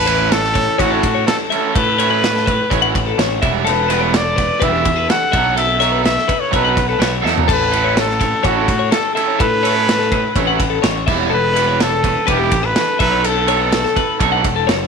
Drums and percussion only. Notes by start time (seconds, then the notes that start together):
0.07 ride
0.32 snare, ride
0.44 snare
0.55 kick, ride
0.79 kick, ride
1.03 kick, ride
1.28 snare, ride
1.52 ride
1.76 kick, ride
1.99 ride
2.24 snare, ride
2.36 snare
2.47 kick, ride
2.71 kick, ride
2.95 kick, ride
3.19 snare, ride
3.43 kick, ride
3.67 ride
3.90 ride
4.14 snare, ride
4.38 kick, ride
4.62 kick, ride
4.85 kick, ride
5.10 snare, ride
5.33 kick, ride
5.57 ride
5.82 ride
6.05 snare, ride
6.18 snare
6.29 kick, ride
6.53 kick, ride
6.77 kick, ride
7.01 snare, ride
7.26 snare
7.38 floor tom
7.49 kick, ride, crash
7.73 ride
7.97 snare, ride
8.10 snare
8.21 kick, ride
8.44 kick, ride
8.68 kick, ride
8.92 snare, ride
9.17 ride
9.40 kick, ride
9.65 ride
9.89 snare, ride
10.01 snare
10.12 kick, ride
10.36 kick, ride
10.60 kick, ride
10.83 snare, ride
11.08 kick, crash
11.56 ride
11.80 snare, ride
12.04 kick, ride
12.28 kick, ride
12.51 kick, ride
12.76 snare, ride
13.00 kick, ride
13.24 ride
13.48 ride
13.72 snare, ride
13.85 snare
13.96 kick, ride
14.20 kick, ride
14.44 kick, ride
14.69 snare, ride